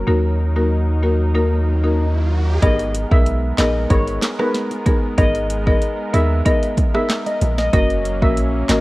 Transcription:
Already playing: analog synth pad F#3 A#4
0.07 sub bass D#2, marimba A#3 D#4 F#4 A#4, analog synth pad D#4, riser
0.56 marimba A#3 D#4 F#4 A#4
1.03 marimba A#3 D#4 F#4 A#4
1.35 marimba A#3 D#4 F#4 A#4
1.83 marimba A#3 D#4 F#4 A#4
2.62 sub bass G#1, analog synth pad G#3 B3 A#4, marimba B3 D#4 G#4 A#4, steel pan D#5, kick, closed hi-hat, high bongo
2.79 closed hi-hat
2.95 closed hi-hat
3.11 sub bass B1, marimba B3 D#4 G#4 A#4, steel pan E5, kick
3.26 closed hi-hat
3.58 sub bass A#1, marimba B3 D#4 G#4 A#4, steel pan D#5, snare, clap, closed hi-hat, low bongo
3.90 sub bass G#1, marimba B3 D#4 G#4 A#4, steel pan C#5, kick, closed hi-hat, high bongo
4.07 closed hi-hat
4.22 snare, clap, closed hi-hat, high bongo
4.39 marimba B3 D#4 G#4 A#4, steel pan B4, cross-stick, high bongo
4.54 snare, closed hi-hat
4.71 closed hi-hat, high bongo
4.86 marimba B3 D#4 G#4 A#4, kick, closed hi-hat, low bongo
5.18 sub bass G#1, marimba B3 D#4 G#4 A#4, steel pan D#5, kick, closed hi-hat, high bongo
5.35 closed hi-hat
5.50 closed hi-hat
5.67 marimba B3 D#4 G#4 A#4, steel pan D#5, kick
5.82 closed hi-hat
6.13 sub bass D#2, marimba B3 D#4 G#4 A#4, steel pan E5, closed hi-hat, low bongo
6.45 marimba B3 D#4 G#4 A#4, steel pan D#5, kick, closed hi-hat, high bongo
6.63 closed hi-hat
6.77 kick, closed hi-hat, high bongo
6.94 marimba B3 D#4 G#4 A#4, steel pan E5, cross-stick, high bongo
7.10 snare, clap, closed hi-hat
7.26 steel pan D#5, closed hi-hat, high bongo
7.41 sub bass A#1, closed hi-hat, low bongo
7.58 steel pan D#5, snare
7.73 sub bass F#1, analog synth pad F#3 A#3 C#4, marimba A#3 C#4 F#4 A#4, steel pan D#5, kick, closed hi-hat, high bongo
7.90 closed hi-hat
8.05 closed hi-hat
8.22 sub bass A#1, marimba A#3 C#4 F#4 A#4, steel pan E5, kick
8.37 closed hi-hat
8.69 sub bass G#1, marimba A#3 C#4 F#4 A#4, steel pan D#5, snare, clap, closed hi-hat, low bongo

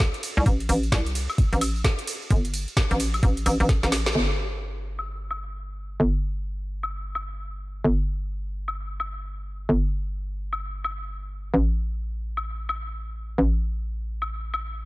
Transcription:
Already playing: fm bass C2
0.00 kick, snare, closed hi-hat, tambourine
0.14 closed hi-hat
0.23 open hi-hat, ride, tambourine
0.37 fm bass C2, tambourine
0.46 fm bass A1, kick, closed hi-hat, tambourine
0.60 closed hi-hat
0.69 fm bass A1, open hi-hat, ride, tambourine
0.83 closed hi-hat, tambourine
0.92 fm bass C2, kick, snare, closed hi-hat, tambourine
1.06 closed hi-hat, tambourine
1.15 open hi-hat, ride, tambourine
1.30 tambourine, high woodblock
1.38 kick, closed hi-hat, tambourine
1.53 fm bass A1, closed hi-hat, tambourine
1.61 open hi-hat, ride, tambourine, high woodblock
1.76 tambourine
1.84 kick, snare, closed hi-hat, tambourine
1.99 closed hi-hat
2.07 open hi-hat, ride, tambourine
2.22 tambourine
2.30 fm bass G1, kick, closed hi-hat, tambourine
2.45 closed hi-hat, tambourine
2.54 open hi-hat, ride, tambourine
2.68 closed hi-hat, tambourine
2.77 kick, snare, closed hi-hat, tambourine
2.91 fm bass A1, closed hi-hat, tambourine
3.00 open hi-hat, ride, tambourine
3.14 closed hi-hat, tambourine, high woodblock
3.23 fm bass A1, kick, closed hi-hat, tambourine
3.37 closed hi-hat, tambourine
3.46 fm bass A1, open hi-hat, ride, tambourine, high woodblock
3.60 fm bass A1, closed hi-hat, tambourine
3.69 kick, snare, closed hi-hat, tambourine
3.83 fm bass A1, snare, closed hi-hat
3.92 snare, open hi-hat, ride, tambourine
4.06 snare, closed hi-hat, tambourine
4.15 fm bass G1
4.99 high woodblock
5.31 high woodblock
6.00 fm bass G1
6.83 high woodblock
7.15 high woodblock
7.84 fm bass G1
8.68 high woodblock
9.00 high woodblock
9.69 fm bass G1
10.53 high woodblock
10.84 high woodblock
11.54 fm bass A1
12.37 high woodblock
12.69 high woodblock
13.38 fm bass A1
14.22 high woodblock
14.54 high woodblock

